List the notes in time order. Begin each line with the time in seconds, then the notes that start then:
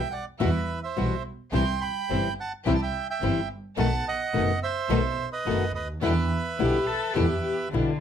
Already playing: G5
0.11 D5 F#5
0.39 E2 B2 E3 G3 B3 E4 F#4 B4 E5
0.83 C5 E5
0.97 B1 B2 E3 G3 B3 E4 F#4
1.53 C2 C3 E3 G3 C4 E4 G4 G5 C6
1.81 G5 B5
2.10 G1 C3 E3 G3 C4 E4 G4
2.40 F#5 A5
2.65 C2 C3 E3 G3 C4 E4 G4 E5 G5
2.75 A5
2.82 E5 G5
3.10 E5 G5
3.21 G1 C3 E3 G3 C4 E4 G4
3.77 B1 B2 D#3 A3 B3 D#4 F#4 A4 F#5 A5
4.08 D#5 F#5
4.33 F#1 B2 D#3 A3 B3 D#4 F#4 A4
4.63 C5 E5
4.90 B1 B2 D#3 A3 B3 D#4 F#4 A4
5.33 B4 D#5
5.46 F#1 B2 D#3 A3 B3 D#4 F#4 A4
5.75 D2 B4 D#5
6.01 E2 B2 D3 G3 B3 D4 E4 G4 B4 E5
6.59 B1 B2 D3 G3 B3 D4 E4 G4
6.87 A4
7.14 E2 B2 D3 G3 B3 D4 E4 G4
7.42 G4
7.72 B1 B2 D3 G3 B3 D4 E4 G4